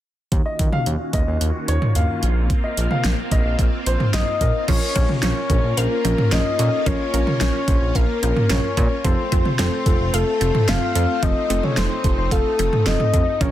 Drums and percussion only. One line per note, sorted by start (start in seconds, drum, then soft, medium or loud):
0.32 kick loud
0.32 closed hi-hat medium
0.59 kick medium
0.59 closed hi-hat medium
0.73 mid tom medium
0.86 closed hi-hat medium
1.13 kick medium
1.13 closed hi-hat medium
1.41 closed hi-hat medium
1.68 closed hi-hat medium
1.82 mid tom medium
1.95 closed hi-hat medium
2.23 closed hi-hat medium
2.50 kick loud
2.50 closed hi-hat medium
2.77 closed hi-hat medium
2.91 mid tom medium
3.04 snare loud
3.04 closed hi-hat medium
3.31 kick medium
3.31 closed hi-hat medium
3.59 kick medium
3.59 closed hi-hat medium
3.86 closed hi-hat medium
4.00 mid tom medium
4.13 snare loud
4.13 closed hi-hat medium
4.41 kick medium
4.41 closed hi-hat medium
4.68 kick loud
4.68 closed hi-hat medium
4.68 crash medium
4.96 kick medium
4.96 closed hi-hat medium
5.09 mid tom medium
5.23 snare loud
5.23 closed hi-hat medium
5.50 kick loud
5.50 closed hi-hat medium
5.78 closed hi-hat medium
6.05 closed hi-hat medium
6.18 mid tom loud
6.32 snare loud
6.32 closed hi-hat medium
6.59 closed hi-hat medium
6.86 kick loud
6.86 closed hi-hat medium
7.14 closed hi-hat medium
7.27 mid tom medium
7.41 snare loud
7.41 closed hi-hat medium
7.68 kick loud
7.68 closed hi-hat medium
7.95 kick medium
7.95 closed hi-hat medium
8.23 closed hi-hat medium
8.37 mid tom loud
8.50 snare loud
8.50 closed hi-hat medium
8.77 kick medium
8.77 closed hi-hat medium
9.05 kick loud
9.05 closed hi-hat medium
9.32 kick medium
9.32 closed hi-hat medium
9.45 mid tom medium
9.59 snare loud
9.59 closed hi-hat medium
9.86 kick loud
9.86 closed hi-hat medium
10.14 closed hi-hat medium
10.41 closed hi-hat medium
10.55 mid tom loud
10.68 snare loud
10.68 closed hi-hat medium
10.95 closed hi-hat medium
11.23 kick loud
11.23 closed hi-hat medium
11.50 closed hi-hat medium
11.63 mid tom medium
11.77 snare loud
11.77 closed hi-hat medium
12.04 kick loud
12.04 closed hi-hat medium
12.31 kick medium
12.31 closed hi-hat medium
12.59 closed hi-hat medium
12.73 mid tom loud
12.86 snare loud
12.86 closed hi-hat medium
13.00 mid tom medium
13.14 kick medium
13.14 closed hi-hat medium
13.41 kick loud
13.41 closed hi-hat medium